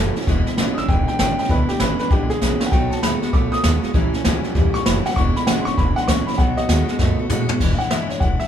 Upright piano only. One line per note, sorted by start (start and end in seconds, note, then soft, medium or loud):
0.00 0.15 A4 loud
0.74 0.75 D#6 medium
0.78 0.89 E6 loud
0.89 1.07 G5 medium
1.08 1.18 G5 loud
1.19 1.38 G5 loud
1.39 1.50 G5 loud
1.50 1.69 B4 medium
1.69 1.80 G4 loud
1.80 1.98 B4 loud
1.99 2.11 B4 loud
2.11 2.24 G4 loud
2.25 2.28 G4 medium
2.30 2.60 G#4 loud
2.66 2.69 F#5 medium
2.71 2.91 G5 loud
2.91 3.02 A5 medium
3.02 3.32 B5 medium
3.33 3.52 D6 loud
3.52 3.93 D#6 loud
4.74 4.85 C#6 loud
4.85 5.04 B5 medium
5.06 5.17 F#5 loud
5.16 5.35 C#6 loud
5.36 5.47 B5 loud
5.47 5.66 F#5 medium
5.61 5.63 C6 medium
5.65 5.77 C#6 loud
5.77 5.96 B5 loud
5.96 6.07 F#5 loud
6.03 6.06 C6 medium
6.08 6.26 C#6 loud
6.27 6.38 B5 medium
6.38 6.57 F#5 loud
6.57 7.14 F#4 medium
6.57 7.17 D#5 loud
7.74 7.76 F5 medium
7.78 7.90 F#5 loud
7.91 8.09 E5 loud
8.09 8.20 C#5 medium
8.20 8.39 F#5 medium
8.40 8.48 E5 loud